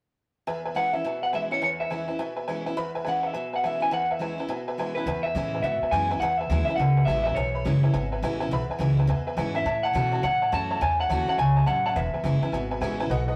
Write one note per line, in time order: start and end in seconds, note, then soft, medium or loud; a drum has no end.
0.47 1.03 E2 medium
0.47 0.59 B4 loud
0.47 0.58 E5 loud
0.47 0.59 G#5 loud
0.65 0.72 B4 medium
0.65 0.72 E5 medium
0.65 0.72 G#5 medium
0.75 0.93 E3 medium
0.75 0.93 G#3 medium
0.75 0.93 C#4 medium
0.75 0.92 E4 medium
0.75 0.87 B4 medium
0.75 0.88 E5 medium
0.75 0.93 F#5 loud
0.75 0.87 G#5 loud
0.93 1.05 C#4 soft
0.93 1.04 E4 medium
0.93 1.00 B4 medium
0.93 1.23 E5 medium
0.93 1.01 E5 medium
0.93 1.01 G#5 medium
1.04 1.60 B2 medium
1.04 1.16 B4 medium
1.04 1.16 E5 medium
1.04 1.17 G#5 medium
1.22 1.29 B4 medium
1.22 1.30 E5 medium
1.22 1.30 F#5 medium
1.22 1.28 F#5 medium
1.33 1.51 E3 medium
1.33 1.51 G#3 medium
1.33 1.52 C#4 medium
1.33 1.50 E4 medium
1.33 1.44 B4 medium
1.33 1.44 E5 medium
1.33 1.40 E5 medium
1.33 1.44 G#5 medium
1.51 1.63 C#4 soft
1.51 1.62 E4 medium
1.51 1.58 B4 medium
1.51 1.62 C#5 medium
1.51 1.59 E5 medium
1.51 1.58 G#5 medium
1.62 2.18 E2 medium
1.62 1.73 B4 medium
1.62 1.68 C#5 medium
1.62 1.73 E5 medium
1.62 1.74 G#5 medium
1.80 1.87 B4 medium
1.80 2.17 E5 medium
1.80 1.87 E5 medium
1.80 1.87 G#5 medium
1.90 2.08 E3 medium
1.90 2.08 G#3 medium
1.90 2.08 C#4 medium
1.90 2.06 E4 medium
1.90 2.02 B4 medium
1.90 2.02 E5 medium
1.90 2.02 G#5 loud
2.08 2.20 C#4 medium
2.08 2.19 E4 medium
2.08 2.15 B4 medium
2.08 2.15 E5 medium
2.08 2.15 G#5 medium
2.19 2.75 B2 medium
2.19 2.30 B4 medium
2.19 2.31 E5 medium
2.19 2.30 G#5 loud
2.36 2.44 B4 medium
2.36 2.44 E5 medium
2.36 2.44 G#5 medium
2.48 2.66 E3 medium
2.48 2.66 G#3 medium
2.48 2.66 C#4 medium
2.48 2.65 E4 medium
2.48 2.59 B4 loud
2.48 2.59 E5 medium
2.48 2.59 G#5 loud
2.66 2.78 C#4 medium
2.66 2.77 E4 medium
2.66 2.73 B4 medium
2.66 2.73 E5 medium
2.66 2.73 G#5 medium
2.77 3.32 E2 medium
2.77 2.88 B4 loud
2.77 2.88 E5 loud
2.77 2.88 B5 loud
2.95 3.02 B4 medium
2.95 3.02 E5 medium
2.95 3.02 G#5 loud
3.04 3.34 E3 medium
3.04 3.34 G#3 medium
3.04 3.34 C#4 medium
3.04 3.35 E4 medium
3.04 3.16 B4 loud
3.04 3.16 E5 medium
3.04 3.16 G#5 loud
3.09 3.26 F#5 medium
3.22 3.30 B4 medium
3.22 3.30 E5 medium
3.22 3.54 E5 medium
3.22 3.30 G#5 medium
3.33 3.90 B2 medium
3.33 3.45 B4 medium
3.33 3.45 E5 medium
3.33 3.45 G#5 medium
3.53 3.59 B4 medium
3.53 3.59 E5 medium
3.53 3.66 F#5 medium
3.53 3.60 G#5 medium
3.63 3.81 E3 medium
3.63 3.81 G#3 medium
3.63 3.82 C#4 medium
3.63 3.79 E4 medium
3.63 3.74 B4 medium
3.63 3.74 E5 medium
3.63 3.82 E5 medium
3.63 3.75 G#5 medium
3.80 3.92 C#4 soft
3.80 3.91 E4 medium
3.80 3.88 B4 medium
3.80 3.88 E5 medium
3.80 3.88 G#5 medium
3.80 3.93 G#5 loud
3.91 4.47 E2 medium
3.91 4.03 B4 medium
3.91 4.03 E5 medium
3.91 4.12 F#5 medium
3.91 4.03 G#5 loud
4.10 4.17 B4 medium
4.10 4.17 E5 medium
4.10 4.50 E5 medium
4.10 4.17 G#5 medium
4.19 4.37 E3 medium
4.19 4.38 G#3 medium
4.19 4.38 C#4 medium
4.19 4.37 E4 medium
4.19 4.32 B4 medium
4.19 4.32 E5 medium
4.19 4.32 G#5 loud
4.38 4.50 C#4 soft
4.38 4.49 E4 medium
4.38 4.46 B4 medium
4.38 4.46 E5 medium
4.38 4.46 G#5 medium
4.49 5.04 B2 medium
4.49 4.60 B4 medium
4.49 4.60 E5 medium
4.49 4.61 G#5 loud
4.68 4.74 B4 medium
4.68 4.74 E5 medium
4.68 4.74 G#5 medium
4.78 4.95 E3 medium
4.78 4.96 G#3 medium
4.78 4.96 C#4 medium
4.78 4.94 E4 medium
4.78 4.90 B4 medium
4.78 4.90 E5 medium
4.78 4.90 G#5 loud
4.95 5.07 C#4 soft
4.95 5.06 E4 medium
4.95 5.22 B4 medium
4.95 5.03 B4 medium
4.95 5.03 E5 medium
4.95 5.03 G#5 medium
5.06 5.34 E2 medium
5.06 5.62 E2 medium
5.06 5.18 B4 medium
5.06 5.18 E5 medium
5.06 5.18 G#5 loud
5.23 5.32 B4 medium
5.23 5.61 E5 loud
5.23 5.32 E5 medium
5.23 5.32 G#5 medium
5.35 5.62 A2 loud
5.35 5.63 E3 medium
5.35 5.63 G#3 medium
5.35 5.64 C#4 medium
5.35 5.64 E4 medium
5.35 5.47 B4 medium
5.35 5.47 E5 medium
5.35 5.47 G#5 medium
5.54 5.60 B4 medium
5.54 5.61 E5 medium
5.54 5.61 G#5 medium
5.63 5.80 G#2 medium
5.63 6.19 B2 medium
5.63 5.75 B4 medium
5.63 5.91 E5 loud
5.63 5.75 E5 medium
5.63 5.76 F#5 medium
5.81 5.89 B4 medium
5.81 5.89 E5 medium
5.81 5.89 G#5 medium
5.81 muted upright bass stroke soft
5.91 6.20 F#2 medium
5.91 6.10 E3 medium
5.91 6.10 G#3 medium
5.91 6.11 C#4 medium
5.91 6.10 E4 medium
5.91 6.04 B4 medium
5.91 6.04 E5 medium
5.91 6.19 G#5 loud
5.91 6.04 G#5 loud
6.10 6.22 C#4 soft
6.10 6.21 E4 medium
6.10 6.17 B4 medium
6.10 6.18 E5 medium
6.10 6.18 G#5 loud
6.20 6.49 E2 medium
6.20 6.77 E2 medium
6.20 6.33 B4 medium
6.20 6.33 E5 medium
6.20 6.37 F#5 medium
6.20 6.33 G#5 loud
6.37 6.46 B4 medium
6.37 6.64 E5 loud
6.37 6.47 E5 medium
6.37 6.47 G#5 medium
6.50 6.67 D#2 loud
6.50 6.67 E3 medium
6.50 6.68 G#3 medium
6.50 6.68 C#4 medium
6.50 6.67 E4 medium
6.50 6.62 B4 medium
6.50 6.62 E5 medium
6.50 6.62 G#5 medium
6.65 6.78 E4 medium
6.65 6.75 E5 medium
6.65 muted upright bass stroke soft
6.69 6.79 C#4 medium
6.69 6.75 B4 medium
6.69 6.75 E5 medium
6.69 6.75 G#5 medium
6.76 7.06 C#2 loud
6.76 7.34 B2 medium
6.76 7.04 F#5 loud
6.80 6.90 B4 medium
6.80 6.90 E5 medium
6.80 6.91 G#5 medium
6.97 7.03 B4 medium
6.97 7.04 E5 medium
6.97 7.04 G#5 medium
7.05 7.35 A1 medium
7.05 7.35 E3 medium
7.05 7.36 G#3 medium
7.05 7.36 C#4 medium
7.05 7.18 B4 medium
7.05 7.23 E5 medium
7.05 7.19 E5 medium
7.05 7.19 G#5 loud
7.10 7.36 E4 medium
7.24 7.32 B4 medium
7.24 7.36 E5 medium
7.24 7.33 E5 medium
7.24 7.33 G#5 loud
7.35 7.64 B1 medium
7.35 7.92 E2 medium
7.35 7.47 B4 medium
7.35 8.18 C#5 medium
7.35 7.48 E5 medium
7.35 7.48 G#5 loud
7.54 7.61 B4 medium
7.54 7.61 E5 medium
7.54 7.61 B5 medium
7.65 7.93 F#1 loud
7.65 7.82 E3 medium
7.65 7.82 G#3 medium
7.65 7.83 C#4 loud
7.65 7.82 E4 medium
7.65 7.76 B4 medium
7.65 7.76 E5 medium
7.65 7.76 G#5 medium
7.83 7.94 C#4 medium
7.83 7.93 E4 medium
7.83 7.89 B4 medium
7.83 7.90 E5 medium
7.83 7.90 G#5 loud
7.93 8.21 G#1 medium
7.93 8.49 B2 medium
7.93 8.04 B4 medium
7.93 8.04 E5 medium
7.93 8.04 G#5 loud
8.12 8.18 B4 medium
8.12 8.18 E5 medium
8.12 8.19 G#5 medium
8.22 8.50 A1 loud
8.22 8.40 E3 medium
8.22 8.40 G#3 medium
8.22 8.40 C#4 medium
8.22 8.39 E4 medium
8.22 8.34 B4 loud
8.22 8.34 E5 loud
8.22 8.34 G#5 loud
8.40 8.52 C#4 medium
8.40 8.51 E4 medium
8.40 8.47 B4 loud
8.40 8.47 E5 medium
8.40 8.47 G#5 loud
8.51 8.68 B1 medium
8.51 9.07 E2 medium
8.51 8.63 B4 loud
8.51 8.63 E5 loud
8.51 8.63 B5 loud
8.69 8.76 B4 medium
8.69 8.76 E5 medium
8.69 8.77 G#5 medium
8.69 muted upright bass stroke soft
8.79 9.07 C#2 medium
8.79 8.96 E3 medium
8.79 8.97 G#3 medium
8.79 8.97 C#4 medium
8.79 8.96 E4 medium
8.79 8.91 B4 medium
8.79 8.91 E5 medium
8.79 8.91 G#5 loud
8.97 9.09 C#4 soft
8.97 9.08 E4 medium
8.97 9.05 B4 medium
8.97 9.05 E5 medium
8.97 9.05 G#5 medium
9.07 9.36 E2 medium
9.07 9.63 B2 medium
9.07 9.20 B4 medium
9.07 9.20 E5 medium
9.07 9.20 G#5 loud
9.27 9.33 B4 medium
9.27 9.33 E5 medium
9.27 9.34 G#5 loud
9.37 9.65 G#2 medium
9.37 9.54 E3 medium
9.37 9.55 G#3 medium
9.37 9.55 C#4 medium
9.37 9.53 E4 medium
9.37 9.48 B4 loud
9.37 9.48 E5 medium
9.37 9.48 G#5 loud
9.54 9.66 C#4 soft
9.54 9.65 E4 medium
9.54 9.61 B4 medium
9.54 9.61 E5 medium
9.54 9.82 E5 medium
9.54 9.62 G#5 loud
9.65 9.94 A2 medium
9.65 10.21 A2 medium
9.65 9.77 C#5 medium
9.65 9.77 E5 medium
9.65 9.77 A5 loud
9.83 9.91 C#5 medium
9.83 9.91 E5 medium
9.83 10.23 F#5 loud
9.83 9.91 A5 medium
9.93 10.23 B2 medium
9.93 10.11 E3 medium
9.93 10.12 A3 loud
9.93 10.12 C#4 medium
9.93 10.11 F#4 medium
9.93 10.06 C#5 medium
9.93 10.06 E5 medium
9.93 10.06 A5 medium
10.12 10.24 C#4 soft
10.12 10.23 F#4 medium
10.12 10.19 C#5 medium
10.12 10.19 E5 medium
10.12 10.19 A5 medium
10.23 10.79 E2 medium
10.23 10.51 A2 medium
10.23 10.34 C#5 medium
10.23 10.34 E5 medium
10.23 10.53 F#5 loud
10.23 10.34 A5 medium
10.41 10.48 C#5 medium
10.41 10.48 E5 medium
10.41 10.48 A5 medium
10.52 10.80 F#2 medium
10.52 10.80 E3 medium
10.52 10.80 A3 medium
10.52 10.80 C#4 medium
10.52 10.81 F#4 medium
10.52 10.63 C#5 medium
10.52 10.63 E5 medium
10.52 10.63 A5 loud
10.52 10.82 A5 loud
10.70 10.77 C#5 medium
10.70 10.77 E5 medium
10.70 10.77 A5 loud
10.81 11.09 E2 medium
10.81 11.36 A2 medium
10.81 10.92 C#5 loud
10.81 10.92 E5 medium
10.81 10.98 G#5 medium
10.81 10.92 A5 loud
10.99 11.05 C#5 medium
10.99 11.06 E5 medium
10.99 11.28 F#5 loud
10.99 11.06 A5 medium
11.09 11.26 D#2 loud
11.09 11.27 E3 medium
11.09 11.27 A3 medium
11.09 11.27 C#4 medium
11.09 11.26 F#4 loud
11.09 11.20 C#5 medium
11.09 11.21 E5 medium
11.09 11.21 A5 medium
11.27 11.39 C#4 soft
11.27 11.38 F#4 medium
11.27 11.34 C#5 medium
11.27 11.34 E5 medium
11.27 11.38 F#5 medium
11.27 11.34 A5 medium
11.27 muted upright bass stroke soft
11.38 11.66 C#2 medium
11.38 11.66 G#2 medium
11.38 11.49 C#5 medium
11.38 11.49 E5 medium
11.38 11.67 G#5 loud
11.38 11.49 A5 medium
11.56 11.63 C#5 medium
11.56 11.63 E5 medium
11.56 11.63 A5 medium
11.66 11.95 A1 medium
11.66 11.95 F#2 medium
11.66 11.77 C#5 medium
11.66 11.77 E5 medium
11.66 11.85 F#5 loud
11.66 11.77 A5 loud
11.86 11.92 C#5 medium
11.86 11.92 E5 medium
11.86 11.96 F#5 medium
11.86 11.92 A5 loud
11.95 12.12 E1 medium
11.95 12.51 E2 medium
11.95 12.06 B4 medium
11.95 12.07 E5 medium
11.95 12.78 E5 medium
11.95 12.07 G#5 loud
12.13 12.20 B4 medium
12.13 12.20 E5 medium
12.13 12.20 G#5 medium
12.13 muted upright bass stroke soft
12.24 12.41 F#1 loud
12.24 12.41 E3 medium
12.24 12.42 G#3 medium
12.24 12.42 C#4 medium
12.24 12.41 E4 loud
12.24 12.35 B4 medium
12.24 12.35 E5 medium
12.24 12.35 G#5 medium
12.41 12.54 C#4 soft
12.41 12.53 E4 medium
12.41 12.49 B4 medium
12.41 12.49 E5 medium
12.41 12.49 G#5 loud
12.41 muted upright bass stroke soft
12.52 12.80 G#1 medium
12.52 13.09 B2 medium
12.52 12.63 B4 medium
12.52 12.64 E5 medium
12.52 12.64 G#5 loud
12.71 12.77 B4 medium
12.71 12.78 E5 medium
12.71 12.78 G#5 loud
12.81 13.09 A1 medium
12.81 12.99 E3 medium
12.81 12.99 G#3 medium
12.81 13.00 C#4 loud
12.81 12.98 E4 medium
12.81 12.92 B4 loud
12.81 12.93 E5 loud
12.81 12.92 G#5 loud
13.00 13.11 C#4 soft
13.00 13.10 E4 medium
13.00 13.06 B4 loud
13.00 13.06 E5 loud
13.00 13.06 G#5 loud
13.10 13.36 B1 medium
13.10 13.36 B2 medium
13.10 13.21 B4 loud
13.10 13.21 D#5 medium
13.10 13.21 F#5 loud
13.28 13.35 B4 medium
13.28 13.35 D#5 medium
13.28 13.35 F#5 loud